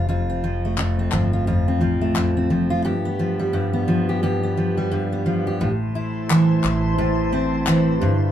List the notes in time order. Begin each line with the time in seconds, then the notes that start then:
Already playing: F1
0.09 F2 F4
0.30 C4
0.44 F3
0.65 A3
0.78 F2, clap
0.99 C4
1.12 G1 F3, clap
1.33 F4
1.47 F2 F4
1.68 C4
1.81 A1 F3
2.01 A3
2.16 F2, clap
2.37 C4
2.50 F1 F3
2.70 F4
2.85 G2 G4
3.05 B3
3.19 F3
3.40 G3
3.53 G2
3.73 B3
3.88 F3
4.09 G4
4.23 G2 G4
4.43 B3
4.57 F3
4.77 G3
4.91 G2
5.13 B3
5.26 F3
5.47 G4
5.61 A1 A2 E4 C5 A5 C6
5.95 E4
6.30 E3, clap
6.64 A1, clap
6.98 A2
7.33 C4
7.67 E3, clap
8.01 G1 G2 F4 D5 G5 B5